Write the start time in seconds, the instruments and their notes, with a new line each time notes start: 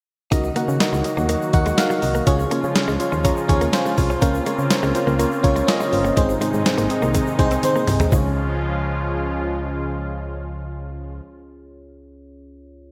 0.31 fm bass C#2, fm electric piano C#3 D#4 F#4 A#4 D#5, analog synth pad D#3 F#3 A#3 F#4, clean electric guitar D#4, kick, closed hi-hat, shaker
0.44 muted clean electric guitar stroke, shaker
0.55 clean electric guitar A#3, fm electric piano D#4 F#4 A#4 F#5, closed hi-hat, shaker
0.68 fm bass C#3, shaker
0.80 fm electric piano D#4 F#4 A#4 D#5, snare, closed hi-hat, shaker
0.93 fm bass C#2, clean electric guitar G#3, shaker
1.04 fm electric piano D#4 F#4 A#4 D#5, muted clean electric guitar stroke, closed hi-hat, shaker
1.17 fm bass D#2, clean electric guitar A#3, shaker
1.28 clean electric guitar A#3, fm electric piano D#4 F#4 A#4 D#5, closed hi-hat, shaker
1.42 shaker
1.53 fm bass D#2, fm electric piano D#4 F#4 A#4 F#5, muted clean electric guitar stroke, kick, closed hi-hat, shaker
1.66 clean electric guitar G#3, closed hi-hat, shaker
1.77 fm electric piano D#4 F#4 A#4 F5, snare, closed hi-hat, shaker
1.90 clean electric guitar F#3, shaker
2.02 fm bass C2, fm electric piano D#4 F#4 A#4 D#5, muted clean electric guitar stroke, open hi-hat, shaker
2.15 clean electric guitar A#3, shaker
2.26 fm bass C#2, fm electric piano C#3 C#4 F4 G#4 C#5, analog synth pad C#3 F3 G#3 F4, clean electric guitar C#4, kick, closed hi-hat, shaker
2.39 muted clean electric guitar stroke, shaker
2.50 clean electric guitar A#3, fm electric piano C#4 F4 G#4 C#5, closed hi-hat, shaker
2.64 fm bass C#3, shaker
2.75 fm electric piano C#4 F4 G#4 C#5, snare, closed hi-hat, shaker
2.88 fm bass C#2, clean electric guitar G#3, shaker
2.99 fm electric piano C#4 F4 G#4 C#5 C6, muted clean electric guitar stroke, closed hi-hat, shaker
3.12 fm bass D#2, clean electric guitar C#4, shaker
3.24 fm electric piano C#4 F4 G#4 C#5 A#5, clean electric guitar C#4, kick, closed hi-hat, shaker
3.37 shaker
3.48 fm bass D#2, fm electric piano C#4 F4 G#4 C#5 G#5, muted clean electric guitar stroke, kick, closed hi-hat, shaker
3.61 clean electric guitar A#3, closed hi-hat, shaker
3.72 fm electric piano C#4 F4 G#4 C5 F5, snare, closed hi-hat, shaker
3.85 clean electric guitar G#3, shaker
3.97 fm bass C2, fm electric piano C#4 F4 G#4 C#5, muted clean electric guitar stroke, kick, open hi-hat, shaker
4.10 clean electric guitar C#4, shaker
4.21 fm bass C#2, fm electric piano C#3 C#4 F4 A#4 C5, clean electric guitar A#3, analog synth pad A#3 C4, kick, closed hi-hat, shaker
4.34 muted clean electric guitar stroke, shaker
4.46 clean electric guitar G#3, fm electric piano C#4 F4 A#4 C#5, closed hi-hat, shaker
4.58 fm bass C#3, shaker
4.70 fm electric piano C#4 F4 A#4 C5, snare, closed hi-hat, shaker
4.83 fm bass C#2, clean electric guitar G#3, shaker
4.94 fm electric piano C#4 F4 A#4 C5, muted clean electric guitar stroke, closed hi-hat, shaker
5.07 fm bass C#2, clean electric guitar A#3, shaker
5.19 clean electric guitar A#3, fm electric piano C#4 F4 A#4 C#5, closed hi-hat, shaker
5.32 shaker
5.43 fm bass C#2, fm electric piano C#4 F4 A#4 C#5, muted clean electric guitar stroke, kick, closed hi-hat, shaker
5.56 clean electric guitar G#3, closed hi-hat, shaker
5.67 fm electric piano C#4 F4 A#4 D#5, snare, closed hi-hat, shaker
5.80 clean electric guitar G#3, shaker
5.92 fm bass G1, fm electric piano C#4 F4 A#4 C5, muted clean electric guitar stroke, open hi-hat, shaker
6.05 clean electric guitar A#3, shaker
6.17 fm bass G#1, fm electric piano G#2 C4 D#4 G#4 C5, analog synth pad C3 D#3 G#3 D#4, clean electric guitar G#3, kick, closed hi-hat, shaker
6.29 muted clean electric guitar stroke, shaker
6.41 clean electric guitar G#3, fm electric piano C4 D#4 G#4 C5, closed hi-hat, shaker
6.54 fm bass G#2, shaker
6.65 fm electric piano C4 D#4 G#4 C5, snare, closed hi-hat, shaker
6.78 fm bass G#1, clean electric guitar A#3, closed hi-hat, shaker
6.90 fm electric piano C4 D#4 G#4 D#5, muted clean electric guitar stroke, closed hi-hat, shaker
7.02 fm bass C2, clean electric guitar A#3, shaker
7.14 clean electric guitar G#3, fm electric piano C4 D#4 G#4 D#5, kick, closed hi-hat, shaker
7.27 shaker
7.38 fm bass C2, fm electric piano C4 D#4 G#4 C5, muted clean electric guitar stroke, kick, closed hi-hat, shaker
7.51 clean electric guitar C4, closed hi-hat, shaker
7.63 fm electric piano C4 D#4 G#4 C5, closed hi-hat, high tom, shaker
7.76 clean electric guitar A#3, shaker
7.87 fm bass C2, fm electric piano C4 D#4 G#4 C5, muted clean electric guitar stroke, mid tom, open hi-hat, shaker
8.00 clean electric guitar G#3, floor tom, shaker
8.10 fm bass C#2, fm electric piano C#2 C#4 F4 G#4, analog synth pad C#3 F3 G#3 F4, clean electric guitar G#3, kick, shaker
8.15 fm electric piano C#5